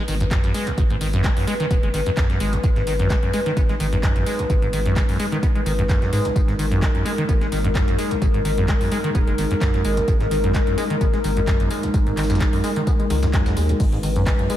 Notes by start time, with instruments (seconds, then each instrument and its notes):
Already playing: analog synth pad G#3 D#4 B4
0.08 sub bass G#1, acid bass D#3, open hi-hat, tambourine
0.20 acid bass F#2, closed hi-hat
0.31 acid bass F#2, kick, snare, clap, closed hi-hat, tambourine
0.44 sub bass G#1, acid bass F#2, closed hi-hat
0.54 acid bass G#3, open hi-hat, tambourine
0.67 acid bass G#1, closed hi-hat
0.78 sub bass G#1, acid bass G#2, kick, closed hi-hat, tambourine
0.90 acid bass G#2, closed hi-hat
1.01 acid bass D#3, open hi-hat, tambourine
1.13 acid bass F#2, closed hi-hat
1.24 acid bass G#3, kick, snare, clap, closed hi-hat, tambourine
1.37 acid bass F#2, open hi-hat
1.47 acid bass G#3, open hi-hat, tambourine
1.60 acid bass D#3, closed hi-hat
1.71 sub bass D#1, acid bass B3, kick, closed hi-hat, tambourine
1.83 sub bass F#1, acid bass G#3, closed hi-hat
1.94 sub bass G#1, acid bass D#3, open hi-hat, tambourine
2.06 acid bass F#2, closed hi-hat
2.17 sub bass B1, acid bass F#2, kick, snare, clap, closed hi-hat, tambourine
2.30 acid bass F#2, snare, closed hi-hat
2.40 sub bass G#1, acid bass G#3, open hi-hat, tambourine
2.53 acid bass G#1, closed hi-hat
2.64 sub bass G#1, acid bass G#2, kick, closed hi-hat, tambourine
2.76 acid bass G#2, snare, closed hi-hat
2.87 acid bass D#3, open hi-hat, tambourine
2.99 acid bass F#2, closed hi-hat
3.10 acid bass G#3, kick, snare, clap, closed hi-hat, tambourine
3.23 acid bass F#2, closed hi-hat
3.33 acid bass G#3, open hi-hat, tambourine
3.46 acid bass D#3, closed hi-hat
3.57 sub bass G#1, acid bass B3, kick, closed hi-hat, tambourine
3.69 acid bass G#3, snare, closed hi-hat
3.80 sub bass G#1, acid bass D#3, open hi-hat, tambourine
3.92 acid bass F#2, closed hi-hat
4.03 acid bass F#2, kick, snare, clap, closed hi-hat, tambourine
4.16 sub bass G#1, acid bass F#2, closed hi-hat
4.26 acid bass G#3, open hi-hat, tambourine
4.39 acid bass G#1, closed hi-hat
4.50 sub bass G#1, acid bass G#2, kick, closed hi-hat, tambourine
4.62 acid bass G#2, closed hi-hat
4.73 acid bass D#3, open hi-hat, tambourine
4.86 acid bass F#2, closed hi-hat
4.96 acid bass G#3, kick, snare, clap, closed hi-hat, tambourine
5.09 acid bass F#2, open hi-hat
5.19 acid bass G#3, open hi-hat, tambourine
5.32 acid bass D#3, closed hi-hat
5.43 acid bass B3, kick, closed hi-hat, tambourine
5.55 acid bass G#3, closed hi-hat
5.66 sub bass G#1, acid bass D#3, open hi-hat, tambourine
5.79 acid bass F#2, closed hi-hat
5.89 acid bass F#2, kick, snare, clap, closed hi-hat, tambourine
6.02 acid bass F#2, snare, closed hi-hat
6.12 sub bass G#2, acid bass G#3, open hi-hat, tambourine
6.25 acid bass G#1, closed hi-hat
6.36 sub bass G#1, acid bass G#2, analog synth pad A#4, kick, closed hi-hat, tambourine
6.48 acid bass G#2, snare, closed hi-hat
6.59 acid bass D#3, open hi-hat, tambourine
6.71 acid bass F#2, closed hi-hat
6.82 acid bass G#3, kick, snare, clap, closed hi-hat, tambourine
6.95 acid bass F#2, closed hi-hat
7.05 acid bass G#3, open hi-hat, tambourine
7.18 acid bass D#3, closed hi-hat
7.29 sub bass G#1, acid bass B3, kick, closed hi-hat, tambourine
7.41 acid bass G#3, snare, closed hi-hat
7.52 sub bass G#1, acid bass D#3, open hi-hat, tambourine
7.64 acid bass F#2, closed hi-hat
7.75 acid bass F#2, kick, snare, clap, closed hi-hat, tambourine
7.88 sub bass G#1, acid bass F#2, closed hi-hat
7.98 acid bass G#3, open hi-hat, tambourine
8.11 acid bass G#1, closed hi-hat
8.22 sub bass G#1, acid bass G#2, kick, closed hi-hat, tambourine
8.34 acid bass G#2, closed hi-hat
8.45 acid bass D#3, open hi-hat, tambourine
8.58 acid bass F#2, closed hi-hat
8.68 acid bass G#3, kick, snare, clap, closed hi-hat, tambourine
8.81 acid bass F#2, open hi-hat
8.92 acid bass G#3, open hi-hat, tambourine
9.04 acid bass D#3, closed hi-hat
9.15 sub bass D#1, acid bass B3, kick, closed hi-hat, tambourine
9.27 sub bass F#1, acid bass G#3, closed hi-hat
9.38 sub bass G#1, acid bass D#3, open hi-hat, tambourine
9.51 acid bass F#2, closed hi-hat
9.61 sub bass B1, acid bass F#2, kick, snare, clap, closed hi-hat, tambourine
9.74 acid bass F#2, snare, closed hi-hat
9.85 sub bass G#1, acid bass G#3, open hi-hat, tambourine
9.97 acid bass G#1, closed hi-hat
10.08 sub bass G#1, acid bass G#2, kick, closed hi-hat, tambourine
10.20 acid bass G#2, snare, closed hi-hat
10.31 acid bass D#3, open hi-hat, tambourine
10.44 acid bass F#2, closed hi-hat
10.54 acid bass G#3, kick, snare, clap, closed hi-hat, tambourine
10.67 acid bass F#2, closed hi-hat
10.78 acid bass G#3, open hi-hat, tambourine
10.90 acid bass D#3, closed hi-hat
11.01 sub bass G#1, acid bass B3, kick, closed hi-hat, tambourine
11.13 acid bass G#3, snare, closed hi-hat
11.24 sub bass G#1, acid bass D#3, open hi-hat, tambourine
11.37 acid bass F#2, closed hi-hat
11.47 acid bass F#2, kick, snare, clap, closed hi-hat, tambourine
11.60 sub bass G#1, acid bass F#2, closed hi-hat
11.71 acid bass G#3, open hi-hat, tambourine
11.83 acid bass G#1, closed hi-hat
11.94 sub bass G#1, acid bass G#2, kick, closed hi-hat, tambourine
12.07 acid bass G#2, closed hi-hat
12.17 acid bass D#3, snare, clap, open hi-hat, tambourine
12.23 snare, tambourine
12.30 acid bass F#2, snare, closed hi-hat, tambourine
12.35 snare, tambourine
12.40 acid bass G#3, kick, snare, clap, closed hi-hat, tambourine
12.53 acid bass F#2, open hi-hat
12.64 acid bass G#3, open hi-hat, tambourine
12.76 acid bass D#3, closed hi-hat
12.87 acid bass B3, kick, closed hi-hat, tambourine, swell
12.99 acid bass G#3, closed hi-hat
13.10 sub bass C#2, acid bass D#3, snare, open hi-hat, tambourine
13.23 acid bass F#2, snare, closed hi-hat, tambourine
13.33 acid bass F#2, kick, snare, clap, closed hi-hat, tambourine
13.46 acid bass F#2, snare, closed hi-hat, tambourine
13.57 sub bass D#2, acid bass G#3, open hi-hat, tambourine
13.69 acid bass G#1, closed hi-hat
13.80 sub bass G#1, acid bass G#2, analog synth pad B4, kick, closed hi-hat, crash, tambourine
13.92 acid bass G#2, snare, closed hi-hat
14.03 acid bass D#3, open hi-hat, tambourine
14.16 acid bass F#2, closed hi-hat
14.26 acid bass G#3, kick, cross-stick, snare, clap, closed hi-hat, tambourine
14.39 acid bass F#2, closed hi-hat
14.50 acid bass G#3, open hi-hat, tambourine